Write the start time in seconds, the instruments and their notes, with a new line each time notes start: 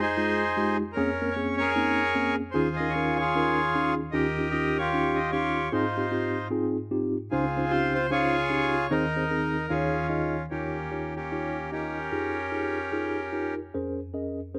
Already playing: tine electric piano F2
0.00 accordion D#4 G#4 C5
0.17 tine electric piano G#3 D#4 F4 G#4
0.56 tine electric piano G#3 D#4 F4 G4
0.93 accordion C#4 A#4
0.97 tine electric piano F2 A#3 C4 C#4 G#4
1.22 tine electric piano A#3 C4 C#4 A#4
1.31 accordion C#5
1.36 tine electric piano A#3 C4 C#4 G#4
1.57 accordion G#4 A#4 C#5
1.76 tine electric piano A#3 C4 C#4 D#4
2.15 tine electric piano A#3 C4 C#4 G#4
2.51 tine electric piano D#2 D#3 C#4 D#4 F4 G#4, accordion F4 G#4 C5
2.76 accordion D#5
2.80 tine electric piano C#4 D#4 F4 A#4
2.90 accordion C#5
2.96 tine electric piano C#4 D#4 F4 A#4
3.16 accordion F4 G#4 C#5
3.35 tine electric piano C#4 D#4 F4 A#4
3.75 tine electric piano C#4 D#4 F4 G#4
4.12 tine electric piano D#2 D#3 C#4 D#4 F4 G4, accordion G4 A#4 D#5
4.39 tine electric piano C#4 D#4 F4 G4
4.51 tine electric piano C#4 D#4 F4 G4, accordion D#5
4.78 accordion F4 G4 C#5
4.93 tine electric piano C#4 D#4 F4 G4
5.15 accordion D#5
5.31 tine electric piano C#4 D#4 F4 G4, accordion F4 G4 C#5
5.72 tine electric piano G#2 C4 D#4 F4 G#4, accordion D#4 F4 C5
5.97 tine electric piano C4 D#4 F4 G4
6.11 tine electric piano C4 D#4 F4 G4
6.50 tine electric piano C4 D#4 F4 G#4
6.91 tine electric piano C4 D#4 F4 G4
7.31 tine electric piano C#2 C#3 C#4 D#4 F4 C5, accordion C4 F4 G#4
7.57 tine electric piano C#4 D#4 F4 C5
7.70 tine electric piano C#4 D#4 F4 G4, accordion C5
7.95 accordion C5
8.11 tine electric piano C#4 D#4 F4 C5, accordion F4 G#4 C#5
8.50 tine electric piano C#4 D#4 F4 G4
8.91 tine electric piano D#2 D#3 C4 D#4 G#4 C5, accordion D#4 A#4
9.16 tine electric piano C4 D#4 G#4 C5
9.31 tine electric piano C4 D#4 G#4 A#4
9.69 tine electric piano D#2 D#3 D#4 F4 G#4 C#5, accordion C#4 F4 G#4
10.09 tine electric piano D#4 F4 G#4 D#5
10.50 tine electric piano D#2 D#3 D#4 F4 G4 C#5, accordion A#3 C#4 G4
10.92 tine electric piano D#4 F4 G4 C#5
11.15 accordion A#3 C#4 G4
11.32 tine electric piano D#4 F4 G4 C#5
11.72 accordion C#4 G4 A#4, tine electric piano D#4 F4 G4 D#5
12.12 tine electric piano F2 D#4 F4 G4 G#4
12.52 tine electric piano D#4 F4 G4 G#4
12.92 tine electric piano D#4 F4 G4 G#4
13.33 tine electric piano D#4 F4 G4 A#4
13.74 tine electric piano F2 C#4 G#4 A#4 C5
14.14 tine electric piano C#4 G#4 A#4 D#5
14.54 tine electric piano C#4 G#4 A#4 C5